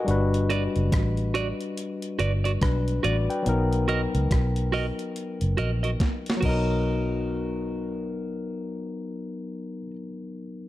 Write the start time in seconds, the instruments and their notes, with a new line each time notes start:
Already playing: tine electric piano D#5
0.04 fingered electric bass G1, tine electric piano G3 D4, closed hi-hat
0.09 tine electric piano F#4 B4
0.34 closed hi-hat
0.50 clean electric guitar F#4 B4 D5, closed hi-hat
0.76 fingered electric bass F#1, closed hi-hat
0.92 fingered electric bass A1, kick, cross-stick, closed hi-hat
1.17 closed hi-hat
1.34 clean electric guitar F#4 B4 D5, closed hi-hat
1.61 closed hi-hat
1.78 closed hi-hat
2.02 closed hi-hat
2.19 fingered electric bass G1, clean electric guitar F#4 B4 D5, closed hi-hat
2.44 clean electric guitar F#4 B4 D5, closed hi-hat
2.62 fingered electric bass B1, tine electric piano D4 B4, kick, cross-stick, closed hi-hat
2.88 closed hi-hat
3.03 fingered electric bass A1, clean electric guitar F#4 B4 D5, tine electric piano F#4 D5, closed hi-hat
3.30 tine electric piano B4 G5, closed hi-hat
3.43 tine electric piano F#3 B3, closed hi-hat
3.47 fingered electric bass B1, tine electric piano D#4 A#4
3.73 closed hi-hat
3.88 clean electric guitar F#4 A#4 D#5, closed hi-hat
4.15 fingered electric bass C#2, closed hi-hat
4.31 fingered electric bass B1, kick, cross-stick, closed hi-hat
4.56 closed hi-hat
4.72 clean electric guitar F#4 A#4 D#5, open hi-hat
4.99 closed hi-hat
5.16 closed hi-hat
5.41 fingered electric bass F#1, closed hi-hat
5.57 fingered electric bass A#1, clean electric guitar F#4 A#4 D#5, closed hi-hat
5.83 clean electric guitar F#4 A#4 D#5, closed hi-hat
6.00 kick, snare, closed hi-hat
6.26 snare, closed hi-hat
6.37 tine electric piano F#3 B3, clean electric guitar F#4
6.42 fingered electric bass B1, tine electric piano D#4, clean electric guitar A#4 D#5, kick, crash
6.49 tine electric piano A#4